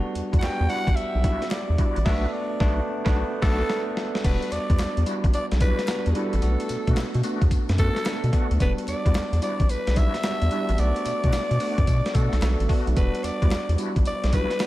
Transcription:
Already playing: G3 B3 D4 F#4
0.15 E2, closed hi-hat
0.32 E2 G3 D4 E4 F#4, kick, closed hi-hat
0.39 E2 G3 B3 D4 F#5, snare, clap
0.43 F#4 G5, closed hi-hat
0.60 E2
0.69 G3 D4 E4 F#4 F#5, open hi-hat
0.87 A1, kick, closed hi-hat
0.96 B1 E5, closed hi-hat
1.15 B1
1.24 G3 D4 E4 F#4, kick, closed hi-hat
1.42 snare, closed hi-hat
1.51 D5, snare, clap, closed hi-hat
1.69 E2
1.78 G3 D4 E4 F#4, kick, closed hi-hat
1.96 A1, closed hi-hat
2.05 B1 A3 B3 D4 F#4 E5, kick, snare, crash
2.13 F#4
2.29 D5 E5
2.60 B1 A3 B3 D4 F#4, kick, snare
3.05 B1 A3 B3 D4 F#4, kick, snare
3.42 B1 A3 B3 D4 F#4 A4, kick, snare, crash
3.70 snare
3.97 snare
4.15 snare
4.24 E1 G3 B3 D4 F#4 B4, kick, closed hi-hat, crash, tambourine
4.42 closed hi-hat
4.52 E2 D5, clap, closed hi-hat, tambourine
4.70 E2 G3 D4 E4 F#4, kick, closed hi-hat
4.79 E2, snare, clap, closed hi-hat, tambourine
4.97 E2, closed hi-hat
5.06 G3 D4 E4 F#4, closed hi-hat, tambourine
5.24 A1, kick, closed hi-hat
5.34 B1 D5, closed hi-hat, tambourine
5.51 B1, snare, closed hi-hat
5.60 G3 D4 E4 F#4 B4, kick, closed hi-hat, tambourine
5.79 snare, closed hi-hat
5.87 G3 B3 D4 F#4, snare, clap, closed hi-hat, tambourine
6.06 E2, closed hi-hat
6.11 G3 G#4
6.15 G3 B3 D4 E4 F#4 A4, closed hi-hat
6.33 A1, closed hi-hat
6.42 B1 A3 B3 D4 F#4, closed hi-hat, tambourine
6.60 closed hi-hat
6.69 B2, clap, closed hi-hat, tambourine
6.87 B2 A3 B3 D4 F#4, kick, closed hi-hat
6.96 B2, snare, clap, closed hi-hat, tambourine
7.14 B2, closed hi-hat
7.23 A3 B3 D4 F#4, closed hi-hat, tambourine
7.42 E2, kick, closed hi-hat
7.51 F#2, kick, closed hi-hat, tambourine
7.69 F#2, snare, closed hi-hat
7.78 A3 B3 D4 F#4 A4, kick, closed hi-hat, tambourine
7.96 snare, closed hi-hat
8.05 A3 B3 D4 A4, snare, clap, closed hi-hat, tambourine
8.24 B2, closed hi-hat
8.33 A3 B3 D4 F#4 A4, kick, closed hi-hat
8.51 D2, closed hi-hat
8.60 E1 G3 B3 D4 F#4 B4, kick, closed hi-hat, tambourine
8.78 closed hi-hat
8.87 E2 D5, clap, closed hi-hat, tambourine
9.05 E2 G3 D4 E4 F#4, kick, closed hi-hat
9.14 E2, snare, clap, closed hi-hat, tambourine
9.32 E2, closed hi-hat
9.42 G3 D4 E4 F#4 D5, closed hi-hat, tambourine
9.60 A1, kick, closed hi-hat
9.69 B1 B4, closed hi-hat, tambourine
9.87 B1, snare, closed hi-hat
9.96 G3 D4 E4 F#4 E5, kick, closed hi-hat, tambourine
10.14 snare, closed hi-hat
10.23 G3 B3 D4 F#4, snare, clap, closed hi-hat, tambourine
10.42 E2, closed hi-hat
10.51 G3 B3 D4 E4 F#4 G4, closed hi-hat
10.69 A1, closed hi-hat
10.78 B1 A3 B3 D4 F#4 D5, closed hi-hat, tambourine
10.96 closed hi-hat
11.05 B2, clap, closed hi-hat, tambourine
11.24 B2 A3 B3 D4 F#4, kick, closed hi-hat
11.33 B2, snare, clap, closed hi-hat, tambourine
11.51 B2, closed hi-hat
11.60 A3 B3 D4 F#4, open hi-hat, tambourine
11.78 F#2, kick, closed hi-hat
11.87 B2, kick, closed hi-hat, tambourine
12.06 snare, closed hi-hat
12.15 B2 A3 B3 D4 F#4 A4, kick, closed hi-hat, tambourine
12.33 B1, snare, closed hi-hat
12.42 B1 A3 B3 D4 F#4, snare, clap, closed hi-hat, tambourine
12.60 A1, closed hi-hat
12.69 A3 B3 D4 F#4 A4, kick, open hi-hat
12.87 B1, closed hi-hat
12.96 E1 G3 B3 D4 F#4 B4, kick, closed hi-hat, tambourine
13.15 closed hi-hat
13.23 E2 D5, clap, closed hi-hat, tambourine
13.42 E2 G3 D4 E4 F#4, kick, closed hi-hat
13.51 E2, snare, clap, closed hi-hat, tambourine
13.69 E2, closed hi-hat
13.78 G3 D4 E4 F#4, closed hi-hat, tambourine
13.96 A1, kick, closed hi-hat
14.05 B1 D5, closed hi-hat, tambourine
14.24 B1, snare, closed hi-hat
14.33 G3 D4 E4 F#4 B4, kick, closed hi-hat, tambourine
14.50 snare, closed hi-hat
14.60 G3 B3 D4 F#4, snare, clap, closed hi-hat, tambourine

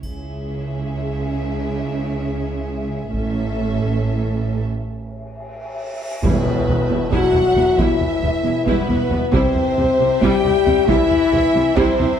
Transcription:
0.02 C#2 C#3 G#3 E4 G#4 E5, taiko, triangle
3.13 A1 A2 A3 C#4 A4 E5, taiko
3.80 taiko
4.68 cymbal swell
6.23 E1 E2 B2 G3 B3 E4 B4 E5, taiko, tam-tam, sub drop
6.46 taiko low
6.68 E1 E2 G3 B3, taiko low
6.89 E1 E2 G3 E4
7.11 E1 E2 F#3 G3 E4 F#4 F#5, taiko
7.33 E1 E2 G3 E4, taiko low
7.56 E1 E2 G3 B3, taiko low
7.77 E1 E2 E3 G3 E4 E5, taiko
8.01 taiko low
8.22 E1 E2 G3 B3, taiko low
8.45 E1 E2 G3 E4
8.66 E1 E2 B2 G3 B3 E4 B4, taiko
8.89 E1 E2 G3 E4, taiko low
9.10 E1 E2 G3 B3, taiko low
9.31 C2 C3 G3 C4 E4 C5 E5, taiko
9.55 taiko low
9.77 C2 C3 G3 C4, taiko low
9.99 C2 C3 G3 E4
10.22 C2 C3 G3 E4 G4 G5, taiko
10.44 C2 C3 G3 E4, taiko low
10.66 C2 C3 G3 C4, taiko low
10.88 C2 C3 E3 G3 E4 E5, taiko
11.11 taiko low
11.33 C2 C3 G3 C4, taiko low
11.55 C2 C3 G3 E4
11.76 C2 C3 G3 C4 E4 C5, taiko
11.99 C2 C3 G3 E4, taiko low

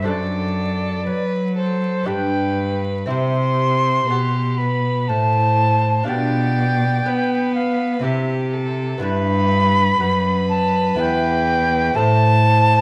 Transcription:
0.02 F#2 C4 D4 A4
0.07 F#2 A4 D5
1.06 F#3 B4
1.56 A4 C5
2.03 B3 D4 G4 G5
2.07 G2 B4
3.06 C3 C4 E4 G4 C5 C6
3.10 C3
4.10 B2 G4
4.58 B4 B5
5.08 A2 C5 A5
6.03 D4 F4 G4 D5 G5
6.08 B2
7.06 B3 B4
7.54 F5
7.99 C4 E4 G4
8.04 C3 G4 E5
8.53 A4
8.98 B3 E4 B4
9.02 G2 B4 B5
10.00 F#2 B4
10.49 A5
10.94 B3 E4 B4
10.98 E2 G5
11.93 C4 E4 A4 A5
11.98 A2 C5

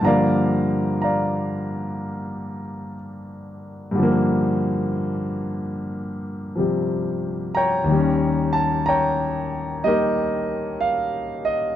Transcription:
0.01 G2 D3 F3 A#5
0.06 A#3 D5 F5
1.02 D5 F5 A#5
3.91 G2 D3
3.99 F3
4.03 A#3
6.55 C3 F3 G3
7.55 C#5 G5 A#5
7.84 D#2 D#3
7.91 G3 C#4
8.53 A5
8.86 C#5 G5 A#5
9.84 G3 A#3 D#4 G4 A#4 D#5
10.80 F5
11.45 D#5

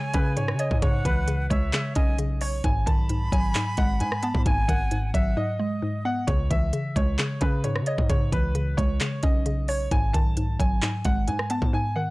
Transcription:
Already playing: C#3 E3 G#3 C#5 G#5
0.14 C#3 C#4 B4, kick, closed hi-hat
0.37 G#2 C#3 C#5, closed hi-hat
0.48 cross-stick
0.54 C#3
0.59 C#5 D#5, closed hi-hat
0.71 G#2, kick
0.82 C#3 C#5 F#5, kick, closed hi-hat
1.05 C#2 E3 B4, kick, closed hi-hat
1.28 C#3, closed hi-hat
1.50 C#2 G#3 C#5 E5, kick, closed hi-hat
1.73 C#3, clap, closed hi-hat
1.95 B1 C#4 D#5 G#5, kick, closed hi-hat
2.18 C#3, closed hi-hat
2.41 C#5, open hi-hat
2.64 G#1 G#2 G#5, kick, closed hi-hat
2.86 B1 D#3 A5 B5, kick, closed hi-hat
3.09 G#2, closed hi-hat
3.32 G#1 F#3 G#5, kick, closed hi-hat
3.55 G#2, clap, closed hi-hat
3.77 G#1 G#3 F#5, kick, closed hi-hat
4.00 G#2 G#5, closed hi-hat
4.12 cross-stick
4.23 B3 A5, closed hi-hat
4.35 G#2, kick
4.46 G#1 G#2 G#5, kick, closed hi-hat
4.68 G#1 D#3 F#5, kick, closed hi-hat
4.91 G#2, closed hi-hat
5.14 G#1 F#3 E5 F#5, kick, closed hi-hat
5.37 G#2 D#5
5.59 G#3 D#5
5.82 G#2
6.05 B3 F#5
6.27 C#2 C#3 C#5, kick, closed hi-hat
6.50 C#2 E3 E5, kick, closed hi-hat
6.73 C#3, closed hi-hat
6.96 C#2 G#3 C#5, kick, closed hi-hat
7.18 C#3, clap, closed hi-hat
7.41 C#3 C#4 B4, kick, closed hi-hat
7.64 G#2 C#3 C#5, closed hi-hat
7.76 cross-stick
7.81 C#3
7.86 C#5 D#5, closed hi-hat
7.98 G#2, kick
8.09 C#3 C#5, kick, closed hi-hat
8.32 C#2 E3 B4, kick, closed hi-hat
8.55 C#3, closed hi-hat
8.77 C#2 G#3 C#5, kick, closed hi-hat
9.00 C#3, clap, closed hi-hat
9.23 B1 C#4 D#5, kick, closed hi-hat
9.46 C#3, closed hi-hat
9.68 C#5, open hi-hat
9.91 G#1 G#2 G#5, kick, closed hi-hat
10.13 B1 D#3 A5, kick, closed hi-hat
10.37 G#2, closed hi-hat
10.59 G#1 F#3 G#5, kick, closed hi-hat
10.82 G#2, clap, closed hi-hat
11.05 G#1 G#3 F#5, kick, closed hi-hat
11.28 G#2 G#5, closed hi-hat
11.39 cross-stick
11.50 B3 A5, closed hi-hat
11.62 G#2, kick
11.73 G#2 G#5
11.96 D#3 F#5

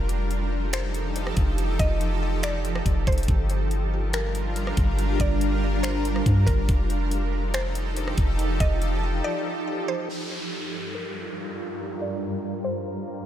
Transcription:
Already playing: F1 F3 D#4 G4 A4
0.09 closed hi-hat
0.31 closed hi-hat
0.73 C5, finger snap, closed hi-hat
0.94 closed hi-hat
1.16 closed hi-hat
1.27 cross-stick
1.37 F1, kick, closed hi-hat
1.58 closed hi-hat
1.79 F1 D#5, kick, closed hi-hat
2.01 closed hi-hat
2.43 D5, finger snap, closed hi-hat
2.65 closed hi-hat
2.75 cross-stick
2.86 F1, kick, closed hi-hat
3.07 F1 C5, kick, closed hi-hat
3.12 closed hi-hat
3.18 closed hi-hat
3.23 closed hi-hat
3.28 G1 G3 D4 F4 A#4, kick, closed hi-hat
3.50 closed hi-hat
3.71 closed hi-hat
4.13 A#4, finger snap, closed hi-hat
4.35 closed hi-hat
4.56 closed hi-hat
4.67 cross-stick
4.77 G1, kick, closed hi-hat
4.99 closed hi-hat
5.20 G1 D5, kick, closed hi-hat
5.41 closed hi-hat
5.83 C5, finger snap, closed hi-hat
6.05 closed hi-hat
6.16 cross-stick
6.26 G2, kick, closed hi-hat
6.46 G1 A#4, kick, closed hi-hat
6.69 F1 F3 D#4 G4 A4, kick, closed hi-hat
6.90 closed hi-hat
7.11 closed hi-hat
7.54 C5, finger snap, closed hi-hat
7.75 closed hi-hat
7.97 closed hi-hat
8.08 cross-stick
8.18 F1, kick, closed hi-hat
8.39 closed hi-hat
8.60 F1 D#5, kick, closed hi-hat
8.82 closed hi-hat
9.24 D5
9.88 C5
10.09 G2 G3 F4 A#4, downlifter
10.95 A#4
12.02 D5
12.64 C5

